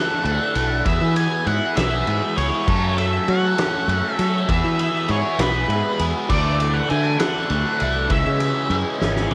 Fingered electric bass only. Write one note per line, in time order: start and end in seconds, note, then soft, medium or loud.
0.25 0.37 D2 medium
0.56 0.81 B1 loud
0.86 0.99 E2 loud
1.01 1.26 E3 loud
1.47 1.59 G#2 loud
1.77 2.02 B1 loud
2.07 2.20 G#2 medium
2.37 2.50 C#2 loud
2.68 3.18 F#2 loud
3.28 3.53 F#3 loud
3.88 4.01 F#2 medium
4.19 4.44 F#3 medium
4.49 4.62 E2 loud
4.64 4.89 E3 loud
5.09 5.22 G#2 loud
5.39 5.64 B1 loud
5.68 5.81 G#2 medium
6.00 6.12 E2 loud
6.30 6.80 D2 loud
6.91 7.16 D3 loud
7.50 7.63 D2 medium
7.81 8.06 C2 loud
8.10 8.23 C#2 loud
8.26 8.51 C#3 loud
8.70 8.83 F#2 loud
9.01 9.26 G#1 loud